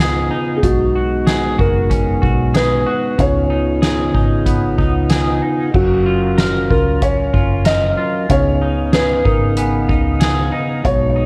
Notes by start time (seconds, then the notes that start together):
Already playing: C#2 C#3 B3 D#4 F4
0.00 G#4
0.31 D#4
0.56 G#4
0.63 B1 B2 G#3 D#4 F#4, kick, closed hi-hat
0.95 F#4
1.27 G#4, snare, closed hi-hat
1.58 F#1 F#4 A#4, kick
1.90 C#4, kick, closed hi-hat
2.22 B1 F#4, kick
2.54 G#4 B4, snare, closed hi-hat
2.86 F#4
3.18 C#2 C#3 D#4 F4 C#5, kick, closed hi-hat
3.50 D#4
3.82 G#4, snare, closed hi-hat
4.14 G#1 D#4, kick
4.46 B3, kick, closed hi-hat
4.78 C#2 D#4, kick
5.10 G#4, snare, closed hi-hat
5.42 D#4
5.74 F#1 F#3 C#4 F#4 A#4 F5 C#6, kick, crash
6.06 F4
6.38 A#4, snare, closed hi-hat
6.70 C#2 F4 A#4, kick
7.02 C#4 C#5, kick, closed hi-hat
7.34 F#1 F4, kick
7.65 A#4 D#5, snare, closed hi-hat
7.97 F4
8.29 C#2 C#3 B3 D#4 C#5, kick, closed hi-hat
8.62 D#4
8.93 G#4 B4, snare, closed hi-hat
9.25 G#1 D#4 A#4, kick
9.57 B3 G#5, closed hi-hat
9.88 C#2 D#4, kick
10.20 G#4, snare, closed hi-hat
10.52 D#4
10.84 B1 B2 G#3 B3 C#5, kick, closed hi-hat
11.16 D#4